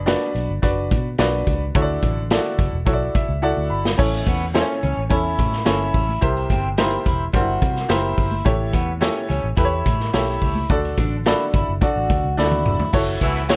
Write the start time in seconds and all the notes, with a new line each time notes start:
Already playing: F#1 B2
0.06 D4 F#4 B4 D5, snare, closed hi-hat
0.35 B1, closed hi-hat
0.49 G1
0.62 F#1 D4 F#4 B4 D5, kick, closed hi-hat
0.91 B2, kick, closed hi-hat
1.18 B1 D4 F#4 B4 D5, snare, closed hi-hat
1.47 C#2, kick, closed hi-hat
1.75 D2 D3 E4 F#4 A4 C#5, kick, closed hi-hat
1.82 D5
2.03 A1, kick, closed hi-hat
2.31 E4 F4 A4 D5, snare, closed hi-hat
2.37 F#4
2.45 closed hi-hat
2.59 F#1, kick, closed hi-hat
2.73 E1
2.86 B1 E4 F#4 A4 C#5, kick, closed hi-hat
2.93 D5
3.15 E5, muted fingered electric bass stroke, kick, closed hi-hat
3.29 C#2
3.42 E4 F#4 A4 D5 F#5
3.57 D2
3.70 G1 B5
3.85 snare
3.98 A1 A2 C#4 E4 A4 C#5, kick, crash
4.14 closed hi-hat
4.27 E2 B3, kick, closed hi-hat, muted conga
4.54 C#4 E4 A4 C5, snare, closed hi-hat, high conga
4.62 C#5
4.83 C#2 C#4, closed hi-hat, low conga
4.97 A1
5.09 E2 C#4 E4 A4 C#5, kick, closed hi-hat, muted conga
5.39 A2, kick, closed hi-hat, low conga
5.52 snare
5.65 G1 C#4 E4 A4 C#5, snare, closed hi-hat, high conga
5.94 A1, kick, open hi-hat
6.09 high conga
6.21 C2 C3 E4 G4 A#4 C5, kick, closed hi-hat, muted conga
6.37 closed hi-hat
6.50 G1 C4, kick, closed hi-hat, muted conga
6.78 D#4 E4 G4 A#4 C5, snare, closed hi-hat, high conga
6.84 E4
6.92 closed hi-hat
7.06 E1 E4, kick, closed hi-hat
7.33 G1 G3 D4 F#4 A#4 C5, kick, closed hi-hat, muted conga
7.40 E4
7.62 C3, kick, closed hi-hat, low conga
7.76 snare
7.88 F#1 E4 G4 A#4 C5, snare, closed hi-hat, high conga
8.18 G1, kick, open hi-hat
8.31 high conga
8.45 A1 A2 E4 G4 A4 C#5, kick, closed hi-hat, muted conga
8.73 E2 B3, kick, closed hi-hat, muted conga
9.01 C#4 E4 G4 A4 C#5, snare, closed hi-hat, high conga
9.29 C#2 C#4, closed hi-hat, low conga
9.44 A1
9.57 E2 E4 G4 A4 B4, kick, closed hi-hat, muted conga
9.65 C#5
9.86 A2, kick, closed hi-hat, low conga
10.00 snare
10.13 B1 E4 G4 A4 C#5, snare, closed hi-hat, high conga
10.29 snare
10.42 C#2, kick, open hi-hat
10.55 high conga
10.69 D2 D3 D4 F#4 A4 D5, kick, closed hi-hat, muted conga
10.85 closed hi-hat
10.98 A1 D4, kick, closed hi-hat, muted conga
11.26 D4 E4 F#4 A4 D5, snare, closed hi-hat, high conga
11.54 G1 E4, kick, closed hi-hat
11.69 F#1
11.81 D4 F#4 A4 D5, kick, closed hi-hat, muted conga
11.96 A1
12.10 D2, kick, closed hi-hat, low conga
12.24 C#2
12.37 D2 D4 E4 A4 D5, snare, high conga
12.45 F#4
12.51 high tom
12.66 E1, mid tom
12.79 floor tom, high conga
12.93 F#1 E4 F#4 A4 C#5, kick, crash, tambourine
13.21 C#2 E3 B3 E4, kick, closed hi-hat, muted conga
13.36 closed hi-hat
13.49 F#3 C#4 E4 F#4 G4 C#5, snare, closed hi-hat, tambourine, high conga